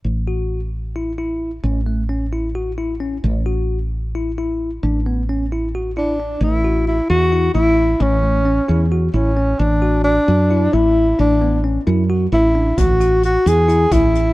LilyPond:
<<
  \new Staff \with { instrumentName = "Tenor saxophone" } { \time 7/8 \key a \major \tempo 4 = 132 r2. r8 | r2. r8 | r2. r8 | r2 r8 d'4 |
e'4 e'8 fis'4 e'4 | cis'2 r8 cis'4 | d'4 d'4. e'4 | d'4 r4. e'4 |
fis'4 fis'8 gis'4 e'4 | }
  \new Staff \with { instrumentName = "Tine electric piano" } { \time 7/8 \key a \major r8 fis'4 r8 e'8 e'4 | cis'8 a8 cis'8 e'8 fis'8 e'8 cis'8 | r8 fis'4 r8 e'8 e'4 | d'8 b8 cis'8 e'8 fis'8 e'8 d'8 |
r8 fis'4 r8 e'8 e'4 | cis'8 a8 cis'8 e'8 fis'8 e'8 cis'8 | r8 fis'4 r8 e'8 e'4 | d'8 b8 cis'8 e'8 fis'8 e'8 d'8 |
r8 fis'4 r8 e'8 e'4 | }
  \new Staff \with { instrumentName = "Fretless electric bass" } { \clef bass \time 7/8 \key a \major a,,2.~ a,,8 | a,,2.~ a,,8 | a,,2.~ a,,8 | a,,2.~ a,,8 |
a,,4. e,4 a,,4 | a,,4. e,4 a,,4 | a,,4. fis,4 a,,4 | a,,4. fis,4 a,,4 |
a,,4. e,4 a,,4 | }
  \new DrumStaff \with { instrumentName = "Drums" } \drummode { \time 7/8 r4. r4 r4 | r4. r4 r4 | r4. r4 r4 | r4. r4 r4 |
r4. r4 r4 | r4. r4 r4 | r4. r4 r4 | r4. r4 r4 |
<hh bd>8 hh8 hh8 hh8 hh8 <hh bd>8 hh8 | }
>>